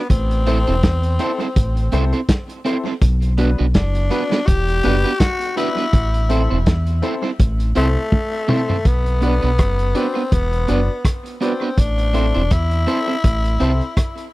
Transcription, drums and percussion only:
0.10 kick, closed hi-hat
0.31 closed hi-hat
0.46 closed hi-hat
0.67 closed hi-hat
0.83 kick, snare, closed hi-hat
1.03 closed hi-hat
1.19 closed hi-hat
1.40 closed hi-hat
1.56 kick, closed hi-hat
1.77 closed hi-hat
1.92 closed hi-hat
2.13 closed hi-hat
2.29 kick, snare, closed hi-hat
2.49 closed hi-hat
2.65 closed hi-hat
3.02 kick, closed hi-hat
3.22 closed hi-hat
3.38 closed hi-hat
3.74 kick, snare, closed hi-hat
3.95 closed hi-hat
4.11 closed hi-hat
4.32 snare, closed hi-hat
4.48 kick, closed hi-hat
4.68 closed hi-hat
4.83 closed hi-hat
5.04 closed hi-hat
5.20 kick, snare, closed hi-hat
5.41 closed hi-hat
5.57 closed hi-hat
5.78 closed hi-hat
5.93 kick, closed hi-hat
6.14 closed hi-hat
6.30 closed hi-hat
6.66 kick, snare, closed hi-hat
6.87 closed hi-hat
7.03 closed hi-hat
7.39 kick, closed hi-hat
7.60 closed hi-hat
7.75 closed hi-hat
8.12 kick, high tom
8.49 mid tom
8.70 floor tom
8.85 kick, closed hi-hat
9.06 closed hi-hat
9.22 closed hi-hat
9.42 closed hi-hat
9.58 kick, cross-stick, closed hi-hat
9.79 closed hi-hat
9.95 closed hi-hat
10.32 kick, closed hi-hat
10.53 closed hi-hat
10.68 closed hi-hat
11.05 kick, cross-stick, closed hi-hat
11.26 closed hi-hat
11.42 closed hi-hat
11.78 kick, closed hi-hat
11.98 closed hi-hat
12.14 closed hi-hat
12.34 closed hi-hat
12.51 kick, cross-stick, closed hi-hat
12.71 closed hi-hat
12.87 closed hi-hat
13.24 kick, closed hi-hat
13.45 closed hi-hat
13.60 closed hi-hat
13.81 closed hi-hat
13.97 kick, cross-stick, closed hi-hat
14.18 closed hi-hat

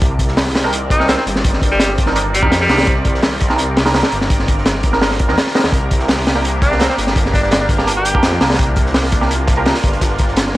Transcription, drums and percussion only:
0.02 kick, closed hi-hat
0.19 kick, closed hi-hat
0.28 snare
0.37 snare, closed hi-hat, open hi-hat
0.47 snare
0.55 snare, closed hi-hat, open hi-hat
0.65 snare
0.73 closed hi-hat
0.90 kick, closed hi-hat
1.00 snare
1.08 snare, closed hi-hat
1.17 snare
1.27 closed hi-hat
1.36 snare
1.44 kick, closed hi-hat
1.53 snare
1.62 kick, closed hi-hat
1.71 snare
1.80 snare, closed hi-hat
1.89 snare
1.98 kick, closed hi-hat
2.06 snare
2.16 closed hi-hat
2.34 closed hi-hat
2.43 kick
2.52 snare, closed hi-hat
2.60 snare
2.69 snare, closed hi-hat, open hi-hat
2.78 snare, open hi-hat
2.83 snare, open hi-hat
2.87 kick, closed hi-hat
3.05 kick, closed hi-hat
3.15 snare
3.22 snare, closed hi-hat, open hi-hat
3.32 snare
3.40 kick, snare, closed hi-hat
3.50 snare
3.58 closed hi-hat
3.77 snare, closed hi-hat, open hi-hat
3.86 snare, open hi-hat
3.94 snare, closed hi-hat, open hi-hat
4.03 snare, open hi-hat
4.12 closed hi-hat
4.21 snare
4.30 kick, closed hi-hat
4.39 snare
4.48 kick, closed hi-hat
4.58 snare
4.66 snare, closed hi-hat
4.75 snare
4.83 kick, closed hi-hat
4.93 snare
5.02 snare, closed hi-hat, open hi-hat
5.11 snare
5.19 kick, closed hi-hat
5.29 snare
5.38 snare, closed hi-hat, open hi-hat
5.46 snare
5.55 snare, closed hi-hat, open hi-hat
5.59 snare, open hi-hat
5.64 snare, open hi-hat
5.73 kick, closed hi-hat
5.91 kick, closed hi-hat
5.99 snare
6.08 snare, closed hi-hat, open hi-hat
6.17 snare
6.26 snare, closed hi-hat, open hi-hat
6.35 snare
6.44 closed hi-hat
6.62 kick, closed hi-hat
6.72 snare
6.80 snare, closed hi-hat
6.81 snare
6.90 snare
6.98 closed hi-hat
7.07 snare
7.16 kick, closed hi-hat
7.26 snare
7.34 kick, closed hi-hat
7.43 snare
7.51 snare, closed hi-hat
7.53 snare
7.61 snare
7.69 kick, closed hi-hat
7.79 snare
7.87 closed hi-hat
8.05 closed hi-hat
8.15 kick
8.23 snare, closed hi-hat
8.32 snare
8.41 snare, closed hi-hat, open hi-hat
8.50 snare, open hi-hat
8.54 snare, open hi-hat
8.59 kick, closed hi-hat
8.76 kick, closed hi-hat
8.86 snare
8.94 snare, closed hi-hat, open hi-hat
9.04 snare
9.12 kick, snare, closed hi-hat
9.22 snare
9.31 closed hi-hat
9.47 kick, snare, closed hi-hat
9.65 snare, closed hi-hat, open hi-hat
9.74 snare, closed hi-hat
9.84 kick, closed hi-hat
9.92 snare, closed hi-hat
10.01 kick, snare, closed hi-hat
10.18 kick, snare, closed hi-hat
10.28 snare
10.36 snare, closed hi-hat
10.47 snare

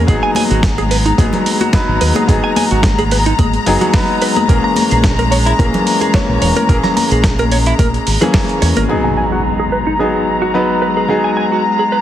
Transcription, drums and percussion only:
0.08 kick, closed hi-hat
0.35 open hi-hat, high conga
0.51 closed hi-hat
0.63 kick, snare, closed hi-hat
0.78 closed hi-hat, high conga
0.91 open hi-hat
1.06 closed hi-hat
1.18 kick, closed hi-hat, high conga
1.33 closed hi-hat, low conga
1.46 open hi-hat
1.60 closed hi-hat, high conga
1.73 kick, snare, closed hi-hat
2.01 open hi-hat
2.15 closed hi-hat, high conga
2.29 kick, closed hi-hat
2.56 open hi-hat, high conga
2.71 closed hi-hat
2.83 kick, snare, closed hi-hat
2.98 closed hi-hat, high conga
3.11 open hi-hat
3.26 closed hi-hat
3.39 kick, closed hi-hat, high conga
3.54 closed hi-hat
3.66 open hi-hat
3.81 closed hi-hat, high conga, low conga
3.94 kick, snare, open hi-hat
4.22 open hi-hat
4.36 closed hi-hat, high conga
4.49 kick, closed hi-hat
4.76 open hi-hat, high conga
4.91 closed hi-hat
5.04 kick, snare, closed hi-hat
5.19 closed hi-hat, high conga
5.32 open hi-hat
5.47 closed hi-hat
5.59 kick, closed hi-hat, high conga
5.74 closed hi-hat, low conga
5.87 open hi-hat
6.01 closed hi-hat, high conga
6.14 kick, snare, closed hi-hat
6.42 open hi-hat
6.56 closed hi-hat, high conga
6.69 kick, closed hi-hat
6.84 snare, closed hi-hat, low conga
6.97 open hi-hat, high conga
7.11 closed hi-hat
7.24 kick, snare, closed hi-hat
7.39 closed hi-hat, high conga
7.52 open hi-hat
7.66 closed hi-hat
7.79 kick, closed hi-hat, high conga
7.94 closed hi-hat
8.07 open hi-hat
8.22 closed hi-hat, high conga, low conga
8.34 kick, snare, open hi-hat
8.49 closed hi-hat
8.62 open hi-hat
8.76 closed hi-hat, high conga
9.17 open hi-hat
9.72 open hi-hat
10.27 open hi-hat
10.82 open hi-hat
11.37 open hi-hat
11.92 open hi-hat

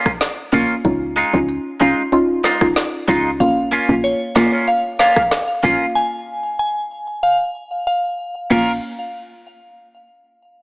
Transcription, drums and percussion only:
0.06 kick, cross-stick
0.21 snare, closed hi-hat
0.53 kick
0.85 kick, closed hi-hat
1.34 kick
1.49 closed hi-hat
2.12 closed hi-hat
2.44 snare
2.61 kick, cross-stick
2.76 snare, closed hi-hat
3.08 kick
3.40 kick, closed hi-hat
3.89 kick
4.04 closed hi-hat
4.36 snare
4.68 closed hi-hat
4.99 snare
5.16 kick, cross-stick
5.31 snare, closed hi-hat
5.64 kick
8.51 kick, crash

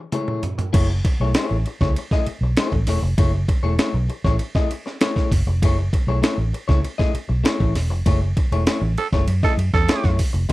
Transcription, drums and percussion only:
0.12 closed hi-hat, mid tom
0.28 mid tom
0.43 closed hi-hat, floor tom
0.59 closed hi-hat, floor tom
0.74 kick, crash, ride
1.05 kick, ride
1.34 snare, ride
1.66 ride
1.81 kick, snare
1.96 ride
2.11 kick, snare
2.27 ride
2.57 snare, ride
2.72 kick
2.87 snare, open hi-hat, ride
3.18 kick, ride
3.48 kick, ride
3.79 snare, ride
4.10 ride
4.24 kick, snare
4.39 ride
4.55 kick, snare
4.71 ride
4.87 snare
5.01 snare, ride
5.16 kick, snare
5.32 kick, open hi-hat, ride
5.62 kick, ride
5.93 kick, ride
6.23 snare, ride
6.54 ride
6.69 kick, snare
6.84 ride
6.99 kick, snare
7.15 ride
7.45 snare, ride
7.60 kick
7.75 snare, open hi-hat, ride
8.06 kick, ride
8.37 kick, ride
8.52 ride
8.67 snare, ride
8.98 ride
9.13 kick, snare
9.28 ride
9.43 kick, snare
9.59 ride
9.74 kick, snare
9.89 snare, ride
10.04 kick, snare
10.19 kick, open hi-hat, ride
10.35 ride
10.49 ride

